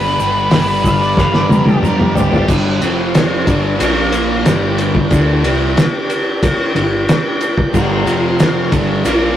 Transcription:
Already playing: G1 G2 D3 G3 B3 D4 G4 B4 D5
0.18 G1 G3 B3 D4 G4, shaker
0.36 shaker
0.51 G1 G2 D3 G3 B3 D4 G4, snare, open hi-hat, shaker
0.84 G1 F5, muted overdriven electric guitar stroke, kick, shaker
1.01 G3 B3 D4 G4 D5, shaker
1.17 G1 F5, kick, snare, shaker
1.34 G3 B3 D4 G4 D5, snare
1.49 F2 G3 B3 D4 G4 A#4, high tom, shaker
1.66 G4, high tom, shaker
1.82 F2 G2 D3 G3 B3 D4 G4 A#4, mid tom, shaker
1.99 G3 B3 D4 G4, mid tom
2.15 G1 G3 B3 C4 D4 G4, floor tom, shaker
2.22 D4 E4
2.28 F4 G4
2.32 G3 B3 D4 G4 A4, floor tom, shaker
2.37 B4 C5
2.42 D5 E5
2.48 G1 G2 D3 G3 F5, kick, crash, shaker
2.81 F1 F2 C3 F3 C4 F4 C5, ride, shaker
3.15 snare, ride, shaker
3.47 G1 G2 D3 G3, kick, ride, shaker
3.80 A#1 A#2 F3 A#3 F4 A#4 F5, ride, shaker
4.12 ride, shaker
4.45 G1 G2 D3 G3 D4 G4 B4 G5, snare, ride, shaker
4.78 ride, shaker
4.95 kick
5.11 D2 D3 A3 D4, kick, ride, shaker
5.44 C2 C3 G3 C4, ride
5.77 snare, ride, shaker
6.10 ride, shaker
6.43 kick, ride, shaker
6.75 G1 G2 D3, ride
7.07 D4 G4 B4 G5, snare, ride, shaker
7.41 ride, shaker
7.58 kick
7.74 G1 G2 D3 G3, kick, crash, shaker
8.06 F1 F2 C3 F3 F4 C5 F5, ride, shaker
8.40 snare, ride, shaker
8.72 G1 G2 D3 G3, kick, ride, shaker
9.04 A#1 A#2 F3 A#3 F4 A#4 F5, ride, shaker

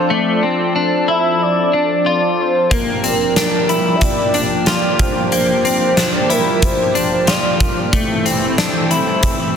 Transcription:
Already playing: F3 C4 D4 F4 A4 C5
0.10 A3 D5
0.43 C4
0.76 D4
1.08 E4 E5
1.42 D5
1.73 D4
2.06 F4 D5
2.41 C5
2.71 F3 A#3 D4 G4 A#4, kick, closed hi-hat
3.04 C4, closed hi-hat
3.36 D4, snare, closed hi-hat
3.69 E4, closed hi-hat
3.96 E5
4.01 D5, kick, closed hi-hat
4.34 D4, closed hi-hat
4.66 F4 D5, snare, closed hi-hat
4.99 C5, kick, closed hi-hat
5.32 A#3, closed hi-hat
5.65 C4, closed hi-hat
5.97 D4, snare, closed hi-hat
6.30 E4 A#4, closed hi-hat
6.62 C5, kick, closed hi-hat
6.95 D4, closed hi-hat
7.27 F4 D5, snare, closed hi-hat
7.60 kick, closed hi-hat
7.93 E3 A3 C4, kick, closed hi-hat
8.25 C4, closed hi-hat
8.58 D4, snare, closed hi-hat
8.91 E4, closed hi-hat
9.23 kick, closed hi-hat

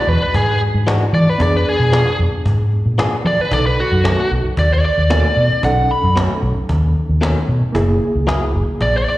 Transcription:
Already playing: G#3 D4 F#4
0.07 E2 B4, cajon slap
0.21 B4, muted fingered electric bass stroke
0.34 G#2 G#4, cajon bass
0.61 cajon slap
0.74 G#2
0.87 E3 G#3 D4 F#4, cajon slap
1.13 E3 D5, cajon slap
1.27 B4, muted fingered electric bass stroke
1.38 F2 B3 D4 G#4, cajon bass
1.42 D5
1.56 B4
1.66 G#4, cajon slap
1.80 B2
1.92 F3 B3 D4 G#4, cajon slap
2.19 F2, cajon slap
2.33 muted fingered electric bass stroke
2.45 G#2, cajon bass
2.72 cajon slap
2.86 A#2
2.98 F3 B3 D4 G#4, cajon slap
3.25 F3 D5, cajon slap
3.39 B4, muted fingered electric bass stroke
3.50 B1 C#3 D#4 A4 D5, cajon bass
3.66 B4
3.78 F#4, cajon slap
3.92 F#2
4.04 B2 D#3 A3 C#4, cajon slap
4.31 B1, cajon slap
4.45 muted fingered electric bass stroke
4.57 D#2 D5, cajon bass, cajon slap
4.74 D5
4.84 D5, cajon slap
4.98 D#2
5.10 B2 D#3 A3 C#4, cajon slap
5.36 B2, cajon slap
5.51 muted fingered electric bass stroke
5.62 B1 C#4 D#4 A4 F#5, cajon bass
5.78 cajon slap
5.90 B5, cajon slap
6.03 F#2
6.16 B2 D#3 A3 C#4, cajon slap
6.42 B1, cajon slap
6.57 muted fingered electric bass stroke
6.69 D#2, cajon bass
6.96 cajon slap
7.09 D#2
7.21 B2 D#3 A3 C#4, cajon slap
7.49 B2, cajon slap
7.62 muted fingered electric bass stroke
7.72 F#1 A#3 E4 G#4, cajon bass
7.90 cajon slap
8.01 cajon slap
8.15 C#2
8.27 F#3 A#3 E4 G#4, cajon slap
8.54 F#1, cajon slap
8.68 muted fingered electric bass stroke
8.81 A#1 D5, cajon bass, cajon slap
8.97 D5
9.07 D5, cajon slap

